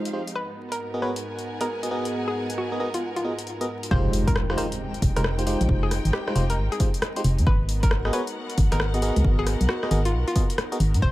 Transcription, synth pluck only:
0.35 B4
0.72 A#4
1.02 B4
1.61 A#4
2.28 G#4
2.58 F#4
2.94 F4
3.16 F4
3.91 C5
4.27 A#4
4.58 C5
5.16 A#4
5.83 G#4
6.13 G4
6.50 A#4
6.72 G#4
7.47 B4
7.83 A#4
8.13 B4
8.72 A#4
9.39 G#4
9.69 F#4
10.06 F4
10.28 F4
11.02 C5

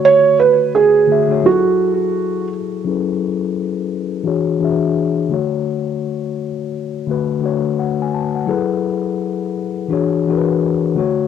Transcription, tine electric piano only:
Already playing: D3 A3 F#4 C#5
1.08 D3 A3 F#4
1.12 E5
1.28 D3 A3 F#4
1.32 C#5
1.43 F#3 E4 G#4
1.48 A4
2.85 F#3 C#4 E4 G#4 A4
2.89 B4
4.23 E3 D4 F#4 G#4
4.28 C#5
4.60 E3 D4 F#4 G#4
4.64 E5
5.29 D3 A3 F#4
5.33 C#5
7.07 D3 A3 F#4
7.11 B4
7.40 D3 A3 F#4
7.46 C#5
7.79 F#5
8.02 G#5
8.14 A5
8.35 F#5
8.46 F#3 E4 G#4 A4
8.51 B4
9.88 E3 D4 F#4 G#4
9.93 C#5
10.27 E3 D4 F#4 G#4
10.32 A#4
10.38 B4
10.95 D3 A3 F#4
11.00 C#5

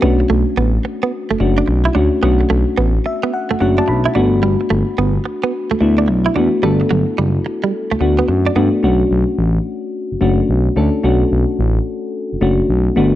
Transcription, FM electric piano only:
0.02 A3 C#4 D4 F#4
1.40 A3 C#4 D4 F#4
1.95 A3 C#4 D4 F#4
2.22 A3 C#4 D4 F#4
3.06 E5
3.34 F#5
3.60 A3 C#4 D4 F#4 F#5
3.79 A5
3.89 B5
4.15 A3 B3 D4 F#4
5.80 A3 B3 D4 E4
6.35 A3 B3 D4 F#4
6.63 A3 B3 D4 A4
8.00 A3 B3 D4 F#4
8.56 A3 B3 D4 F#4
8.83 A3 C#4 D4 F#4
10.21 A3 C#4 D4 F#4
10.76 A3 C#4 D4 A4
11.03 A3 C#4 D4 F#4
12.41 A3 C#4 D4 F#4
12.96 A3 B3 D4 F#4

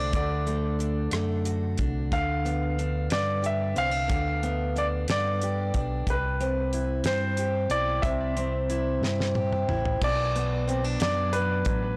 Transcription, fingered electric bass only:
Already playing: C2
0.14 D2
1.12 F#2
1.79 C2
2.12 D2
3.11 G2
3.77 C2
4.09 D2
5.09 G2
5.75 B1
6.07 C2
7.04 G2
7.69 B1
8.03 C2
9.01 G2
9.68 A1
10.01 B1
11.01 F#2
11.66 A1

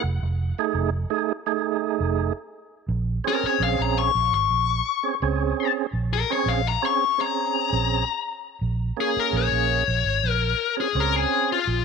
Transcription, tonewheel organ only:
0.59 A3 D#4 G#4
1.10 A3 D#4 G#4
1.46 A3 D#4 G#4
3.24 C4 C#4 G#4
5.03 C4 C#4 G#4
5.22 C4 C#4 G#4
6.30 C4 C#4 G#4
6.82 C4 C#4 G#4
7.18 C4 C#4 G#4
8.97 A#3 C#4 G#4
10.77 C4 C#4 G#4
10.95 C4 C#4 G#4

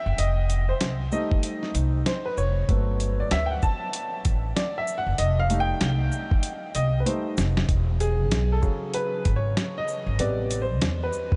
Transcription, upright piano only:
Already playing: E5
0.19 D#5
0.69 C5
1.11 G3 A3 D#4 D#5
2.06 C5
2.25 B4
2.38 C#5
2.69 F#3 A3 B3
3.20 D5
3.32 E5
3.46 G5
3.51 F#5
3.63 A5
4.56 D5
4.78 E5
4.98 F#5
5.18 D#5
5.39 F5
5.49 G3 A3 D#4
5.60 G5
6.75 D#5
7.00 B4
7.05 G3 A3 D#4 C5
8.00 G#4
8.52 A4
8.62 C#3 F#3 G#4
8.94 B4
9.36 C#5
9.78 D#5
10.18 C3 G3 B3 D5
10.62 C5
11.04 B4

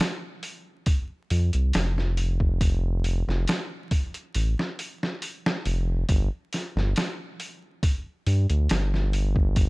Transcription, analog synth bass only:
1.31 F2
1.54 C2
1.75 F1
3.28 F1
4.35 A1
5.66 F1
6.09 G1
6.76 G1
8.27 G2
8.50 D2
8.70 G1

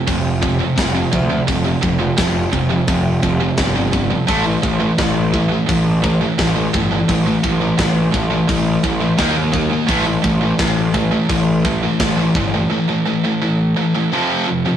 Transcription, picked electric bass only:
0.08 F1
0.78 F1
1.13 D2
1.48 F1
1.83 F1
2.18 F1
2.53 F1
2.89 F1
3.23 F1
3.58 G1
4.29 A1
4.63 A1
4.98 A1
5.69 A1
6.39 A1
6.75 G1
7.10 A1
7.44 A1
7.80 A1
8.15 A1
8.49 A1
8.84 A1
9.19 D#2
9.89 A1
10.24 A1
10.59 A1
11.29 A1
12.01 A1
12.35 G1

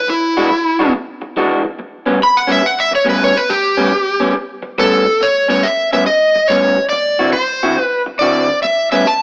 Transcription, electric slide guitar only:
0.10 E4
2.23 B5
2.37 F#5
2.52 E5
2.66 F#5
2.80 E5
2.95 C#5
3.10 B4
3.24 C#5
3.37 B4
3.50 G4
4.79 A4
5.23 C#5
5.50 C#5
5.63 E5
5.93 E5
6.06 D#5
6.48 C#5
6.89 D5
7.33 C5
7.82 B4
8.19 D5
8.63 E5
8.92 E5
9.07 A5

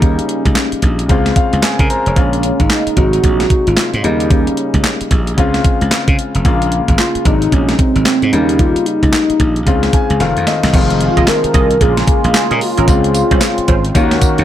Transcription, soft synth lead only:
0.03 C#4
2.17 C#4
2.60 D#4
2.97 F#4
3.67 F4
4.04 D#4
4.31 C#4
6.99 F4
7.26 D#4
7.53 C#4
7.79 C4
8.06 C4
8.33 C#4
8.60 F4
8.86 D#4
11.01 F4
11.28 A#4
11.81 G#4
12.35 G#4
12.62 F4

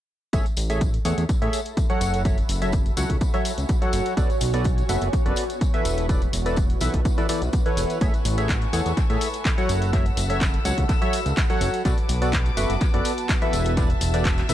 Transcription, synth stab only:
0.33 A3 G#4 A4 C#5 E5
0.70 A3 G#4 A4 C#5 E5
1.05 A3 G#4 A4 C#5 F#5
1.42 A3 G#4 A4 C#5 E5
1.90 F#3 F#4 A4 C#5 F#5
2.25 F#3 F#4 A4 C#5 E5
2.62 F#3 F#4 A4 C#5 E5
2.97 F#3 F#4 A4 C#5 F#5
3.34 F#3 F#4 A4 C#5 E5
3.82 F#3 F#4 A4 C#5 F#5
4.17 B3 F#4 A4 B4 D5
4.54 B3 F#4 A4 B4 D5
4.89 B3 F#4 A4 B4 E5
5.26 B3 F#4 A4 B4 D5
5.74 E3 E4 A4 B4 E5
6.09 E3 E4 A4 B4 D5
6.46 E3 E4 A4 B4 D5
6.81 E3 E4 A4 B4 E5
7.18 E3 E4 A4 B4 D5
7.29 E3 E4 A4 B4 D5
7.66 E3 E4 A4 B4 C#5
8.01 A3 G#4 A4 C#5 E5
8.38 A3 G#4 A4 C#5 E5
8.73 A3 G#4 A4 C#5 F#5
9.10 A3 G#4 A4 C#5 E5
9.58 F#3 F#4 A4 C#5 F#5
9.93 F#3 F#4 A4 C#5 E5
10.30 F#3 F#4 A4 C#5 E5
10.65 F#3 F#4 A4 C#5 F#5
11.02 F#3 F#4 A4 C#5 E5
11.50 F#3 F#4 A4 C#5 F#5
11.85 B3 F#4 A4 B4 D5
12.22 B3 F#4 A4 B4 D5
12.57 B3 F#4 A4 B4 E5
12.94 B3 F#4 A4 B4 D5
13.42 E3 E4 A4 B4 E5
13.77 E3 E4 A4 B4 D5
14.14 E3 E4 A4 B4 D5
14.49 E3 E4 A4 B4 E5

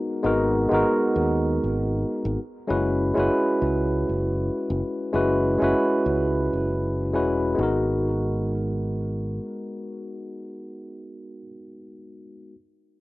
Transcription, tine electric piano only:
Already playing: G#3 B3 D#4 F#4 A#4
0.23 G#3 B3 D#4 F#4 A#4
0.69 G#3 B3 D#4
0.73 F#4 A#4
2.68 G#3 C#4 E4 F#4 B4
3.14 G#3 C#4 E4 F#4
3.19 B4
5.13 G#3 C#4 E4 F#4 B4
5.58 G#3 C#4 E4
5.63 F#4 B4
7.13 G#3 C#4 E4 F#4 B4
7.55 G#3 B3
7.59 D#4 F#4
7.63 A#4

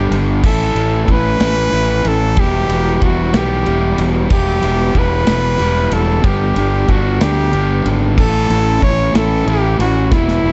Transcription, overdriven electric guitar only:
Already playing: G2 D3 G3 B3 D4
0.43 A2 E3 A3 C#4 E4
0.75 A3 C#4 E4
1.07 E3 A3 C#4 E4
1.40 A2 E3 A3 C#4 E4
1.72 E3 A3 C#4 E4
2.36 E3 G3 B3 E4
2.68 G3 B3 E4
3.00 E3 G3 B3 E4
3.33 E3 G3 B3 E4
3.65 E3 G3 B3 E4
4.29 E3 G3 B3 E4
4.61 G3 B3 E4
4.94 E3 G3 B3 E4
5.26 E3 G3 B3 E4
5.58 E3 G3 B3 E4
6.22 G2 D3 G3 B3 D4
6.55 G3 B3 D4
6.87 D3 G3 B3 D4
7.20 G2 D3 G3 B3 D4
7.52 D3 G3 B3 D4
8.17 A2 E3 A3 C#4 E4
8.49 A3 C#4 E4
8.80 E3 A3 C#4 E4
9.13 A2 E3 A3 C#4 E4
9.46 E3 A3 C#4 E4
10.11 E3 G3 B3 E4
10.44 G3 B3 E4

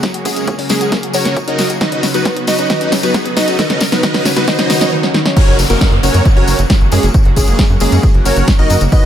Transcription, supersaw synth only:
0.25 G#3 A#3 C#4 G#4
0.70 G#3 A#3 C#4 G#4
1.14 C#4 F#4 A#4 C#5
1.48 D#4 F#4 A#4 D#5
1.81 D#4 F#4 B4 D#5
2.14 B3 D#4 F#4 B4
2.48 D#4 F#4 B4 D#5
2.70 D#4 F#4 B4 D#5
3.03 B3 D#4 F#4 B4
3.37 D#4 F#4 B4 D#5
3.59 D#4 F#4 B4 D#5
3.92 B3 D#4 F#4 B4
4.03 D#4 F#4 B4 D#5
4.37 B3 D#4 F#4 B4
4.48 D#4 F#4 B4 D#5
4.70 D#4 F#4 B4 D#5
5.36 C#4 F#4 A#4 C#5
5.70 A#3 C#4 F#4 A#4
6.03 C#4 F#4 A#4 C#5
6.37 C#4 F#4 A#4 C#5
6.92 G#3 A#3 C#4 G#4
7.36 G#3 A#3 C#4 G#4
7.81 G#3 A#3 C#4 G#4
8.26 C#4 F#4 A#4 C#5
8.59 D#4 F#4 A#4 D#5
8.92 D#4 F#4 B4 D#5

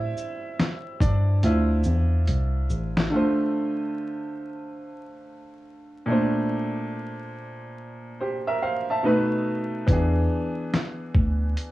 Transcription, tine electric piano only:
Already playing: A2
1.01 G2
1.43 D2
1.86 E2
2.28 C2
2.70 A1
9.88 E2
11.15 D2

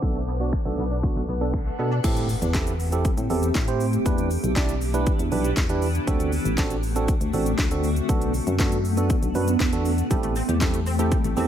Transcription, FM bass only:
0.02 B1
0.65 B1
0.78 B1
1.16 B1
1.28 B1
1.79 B2
2.04 A2
2.42 E2
3.18 A2
3.30 E2
3.55 A2
4.06 E2
4.44 B1
5.19 E2
5.32 B1
5.57 E2
6.07 D2
6.45 A1
7.21 D2
7.33 A1
7.58 D2
8.09 B1
8.47 F#2
9.22 B1
9.35 F#2
9.60 E2
10.11 A1
10.49 E2
11.24 A1
11.37 E2

